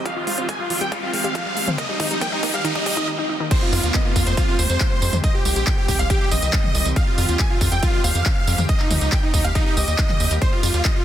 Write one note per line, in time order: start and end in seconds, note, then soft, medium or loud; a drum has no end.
0.00 1.75 C4 medium
0.00 1.74 G4 medium
0.00 riser medium
0.05 1.76 F3 medium
0.05 0.11 F3 loud
0.05 1.76 G#3 medium
0.05 0.14 F5 loud
0.05 kick loud
0.05 closed hi-hat medium
0.16 0.25 F4 medium
0.16 0.21 F4 medium
0.27 0.35 G#3 medium
0.27 0.36 F4 medium
0.27 open hi-hat loud
0.38 0.46 C4 medium
0.38 0.47 F4 medium
0.38 closed hi-hat medium
0.49 0.54 G#3 loud
0.49 0.57 G#5 loud
0.49 kick loud
0.49 closed hi-hat medium
0.59 0.67 G3 medium
0.59 0.68 F4 medium
0.70 0.78 F3 medium
0.70 0.79 F4 medium
0.70 open hi-hat loud
0.81 0.89 G3 loud
0.81 0.90 G5 medium
0.81 closed hi-hat medium
0.92 0.97 G#3 loud
0.92 1.01 F4 medium
0.92 kick loud
0.92 closed hi-hat medium
1.02 1.10 G3 medium
1.02 1.11 F4 medium
1.13 1.19 G#3 medium
1.13 1.69 F5 loud
1.13 open hi-hat loud
1.24 1.32 G3 loud
1.24 closed hi-hat medium
1.35 1.40 F3 loud
1.35 kick loud
1.35 closed hi-hat medium
1.46 1.53 G3 medium
1.56 1.62 G#3 medium
1.56 open hi-hat loud
1.67 1.71 C4 medium
1.67 closed hi-hat medium
1.67 mid tom medium
1.78 3.06 D#3 medium
1.78 3.06 G3 medium
1.78 1.83 A#3 loud
1.78 3.06 A#3 medium
1.78 3.06 G4 medium
1.78 1.87 D#5 loud
1.78 kick loud
1.78 closed hi-hat medium
1.89 1.97 G3 loud
1.89 1.98 D#4 medium
2.00 2.07 D#3 medium
2.00 2.09 D#4 medium
2.00 kick loud
2.00 open hi-hat loud
2.11 2.16 G3 medium
2.11 2.19 D#4 medium
2.11 closed hi-hat medium
2.21 2.26 A#3 medium
2.21 2.30 G5 loud
2.21 kick loud
2.21 closed hi-hat medium
2.32 2.37 D#4 medium
2.32 2.41 D#4 medium
2.43 2.48 A#3 medium
2.43 2.52 D#4 medium
2.43 kick loud
2.43 open hi-hat loud
2.54 2.57 G3 medium
2.54 2.63 F5 loud
2.54 closed hi-hat medium
2.64 2.68 D#3 loud
2.64 2.74 D#4 medium
2.64 kick loud
2.64 closed hi-hat medium
2.75 2.78 G3 loud
2.75 2.84 D#4 medium
2.75 kick loud
2.86 2.89 G3 medium
2.86 3.08 D#5 loud
2.86 kick loud
2.86 open hi-hat loud
2.97 3.05 D#3 medium
2.97 kick medium
2.97 closed hi-hat medium
3.08 3.11 D#4 medium
3.19 3.26 D#4 medium
3.29 3.37 D#4 medium
3.40 3.48 D#3 medium
3.51 5.22 F3 medium
3.51 5.22 G#3 medium
3.51 5.22 C4 medium
3.51 6.93 G4 medium
3.51 3.60 C5 loud
3.51 kick loud
3.51 closed hi-hat medium
3.51 tambourine soft
3.51 crash loud
3.51 downlifter medium
3.62 3.71 F4 medium
3.72 3.80 F2 medium
3.72 3.81 F4 medium
3.72 open hi-hat loud
3.72 tambourine medium
3.83 3.91 D#2 medium
3.83 3.92 F4 medium
3.83 closed hi-hat medium
3.83 tambourine soft
3.94 4.03 D#5 medium
3.94 4.03 D#5 loud
3.94 kick loud
3.94 clap loud
3.94 closed hi-hat medium
3.94 tambourine soft
4.05 4.14 F4 medium
4.16 4.24 F2 loud
4.16 4.24 F4 medium
4.16 4.25 F4 medium
4.16 kick medium
4.16 open hi-hat loud
4.16 tambourine medium
4.26 4.34 F2 medium
4.26 4.35 C5 medium
4.26 closed hi-hat medium
4.26 tambourine soft
4.37 4.46 F4 medium
4.37 kick loud
4.37 closed hi-hat medium
4.37 tambourine soft
4.48 4.57 F4 medium
4.59 4.67 D#2 loud
4.59 5.15 C5 loud
4.59 open hi-hat loud
4.59 tambourine medium
4.70 4.78 F2 medium
4.70 closed hi-hat medium
4.70 tambourine soft
4.80 kick loud
4.80 clap loud
4.80 closed hi-hat medium
5.02 5.10 F2 loud
5.02 open hi-hat loud
5.02 tambourine medium
5.13 5.21 F2 medium
5.13 closed hi-hat medium
5.13 mid tom medium
5.13 tambourine soft
5.24 6.95 D#3 medium
5.24 6.95 G3 medium
5.24 8.65 C4 medium
5.24 5.32 D#5 loud
5.24 kick loud
5.24 closed hi-hat medium
5.24 tambourine soft
5.34 5.43 G4 medium
5.45 5.53 C2 loud
5.45 5.54 G4 medium
5.45 open hi-hat loud
5.45 tambourine medium
5.56 5.64 A#1 medium
5.56 5.65 G4 medium
5.56 closed hi-hat medium
5.56 tambourine soft
5.67 5.75 G5 loud
5.67 5.76 G5 loud
5.67 kick loud
5.67 clap loud
5.67 closed hi-hat medium
5.67 tambourine soft
5.77 5.86 G4 medium
5.88 5.96 C2 medium
5.88 5.97 G4 medium
5.88 kick medium
5.88 open hi-hat loud
5.88 tambourine medium
5.99 6.07 C2 medium
5.99 6.08 F5 loud
5.99 closed hi-hat medium
5.99 tambourine soft
6.10 6.19 G4 medium
6.10 kick loud
6.10 closed hi-hat medium
6.10 tambourine soft
6.20 6.29 G4 medium
6.20 6.30 G4 medium
6.31 6.39 A#1 medium
6.31 6.88 D#5 loud
6.31 open hi-hat loud
6.31 tambourine medium
6.42 6.50 C2 medium
6.42 closed hi-hat medium
6.42 tambourine soft
6.53 kick loud
6.53 clap loud
6.53 closed hi-hat medium
6.53 tambourine soft
6.64 mid tom medium
6.75 6.83 C2 loud
6.75 open hi-hat loud
6.75 tambourine medium
6.86 6.93 C2 medium
6.86 closed hi-hat medium
6.86 tambourine soft
6.96 8.67 F3 medium
6.96 8.67 G#3 medium
6.96 11.05 G4 medium
6.96 7.05 F5 loud
6.96 kick loud
6.96 closed hi-hat medium
6.96 tambourine soft
7.07 7.16 F4 medium
7.18 7.26 F2 medium
7.18 7.27 F4 medium
7.18 open hi-hat loud
7.18 tambourine medium
7.29 7.37 D#2 medium
7.29 7.37 F4 medium
7.29 closed hi-hat medium
7.29 tambourine soft
7.39 7.48 G#5 loud
7.39 kick loud
7.39 clap loud
7.39 closed hi-hat medium
7.39 tambourine soft
7.50 7.59 F4 medium
7.61 7.69 F2 medium
7.61 7.70 F4 medium
7.61 kick medium
7.61 open hi-hat loud
7.61 tambourine medium
7.72 7.80 F2 medium
7.72 7.81 G5 medium
7.72 7.81 G5 loud
7.72 closed hi-hat medium
7.72 tambourine soft
7.82 7.91 F4 medium
7.82 kick loud
7.82 closed hi-hat medium
7.82 tambourine soft
7.93 8.02 F4 medium
8.04 8.12 D#2 loud
8.04 8.60 F5 loud
8.04 open hi-hat loud
8.04 tambourine medium
8.15 8.23 F2 medium
8.15 closed hi-hat medium
8.15 tambourine soft
8.26 kick loud
8.26 clap loud
8.26 closed hi-hat medium
8.26 tambourine soft
8.47 8.55 F2 loud
8.47 open hi-hat loud
8.47 tambourine medium
8.58 8.66 F2 medium
8.58 closed hi-hat medium
8.58 mid tom medium
8.58 tambourine soft
8.69 10.40 D#3 medium
8.69 10.40 G3 medium
8.69 10.40 A#3 medium
8.69 8.78 D#5 loud
8.69 kick loud
8.69 closed hi-hat medium
8.69 tambourine soft
8.80 8.88 D#4 medium
8.80 8.89 D#4 medium
8.80 clap soft
8.90 8.99 D#2 medium
8.90 8.99 D#4 medium
8.90 open hi-hat loud
8.90 mid tom medium
8.90 tambourine medium
9.01 9.09 C#2 medium
9.01 9.10 D#4 medium
9.01 closed hi-hat medium
9.01 tambourine soft
9.12 9.21 G5 medium
9.12 9.21 G5 loud
9.12 kick loud
9.12 clap loud
9.12 closed hi-hat medium
9.12 tambourine soft
9.23 9.32 D#4 medium
9.34 9.42 D#2 loud
9.34 9.42 D#4 medium
9.34 9.43 D#4 medium
9.34 kick medium
9.34 open hi-hat loud
9.34 tambourine medium
9.44 9.52 D#2 medium
9.44 9.53 F5 medium
9.44 closed hi-hat medium
9.44 tambourine soft
9.55 9.64 D#4 medium
9.55 kick loud
9.55 closed hi-hat medium
9.55 tambourine soft
9.66 9.75 D#4 medium
9.77 9.85 C#2 loud
9.77 10.33 D#5 medium
9.77 10.33 D#5 loud
9.77 open hi-hat loud
9.77 tambourine medium
9.88 9.96 D#2 medium
9.88 closed hi-hat medium
9.88 tambourine soft
9.98 kick loud
9.98 clap loud
9.98 closed hi-hat medium
10.09 clap soft
10.09 mid tom medium
10.20 10.28 D#2 loud
10.20 open hi-hat loud
10.20 tambourine medium
10.31 10.39 D#2 medium
10.31 closed hi-hat medium
10.31 tambourine soft
10.41 11.05 F3 medium
10.41 11.05 G#3 medium
10.41 11.05 C4 medium
10.41 10.50 C5 loud
10.41 10.50 C5 medium
10.41 kick loud
10.41 closed hi-hat medium
10.41 tambourine soft
10.52 10.61 F4 medium
10.63 10.71 F2 medium
10.63 10.72 F4 medium
10.63 open hi-hat loud
10.63 ride medium
10.63 tambourine medium
10.74 10.82 D#2 medium
10.74 10.83 F4 medium
10.74 closed hi-hat medium
10.74 tambourine soft
10.85 10.94 D#5 loud
10.85 kick loud
10.85 clap loud
10.85 closed hi-hat medium
10.85 tambourine soft
10.96 11.04 F4 medium